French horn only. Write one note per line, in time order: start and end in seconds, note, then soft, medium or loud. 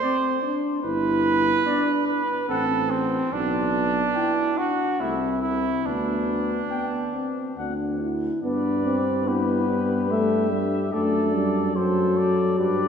0.02 0.42 C4 medium
0.43 0.84 D4 medium
0.84 1.65 E4 medium
1.66 2.20 D4 medium
2.49 3.29 C4 medium
3.33 4.14 B3 medium
4.16 4.59 E4 medium
4.57 5.02 D4 medium
5.00 5.85 C4 medium
5.85 6.61 B3 soft
6.71 7.16 B3 medium
7.14 7.57 C4 medium
7.58 7.99 D4 soft
8.00 8.42 E4 soft
8.43 9.29 D4 medium
9.27 9.68 E4 medium
9.69 10.76 D4 medium
10.93 11.77 D4 medium
11.75 12.60 A4 medium
12.58 12.88 G4 medium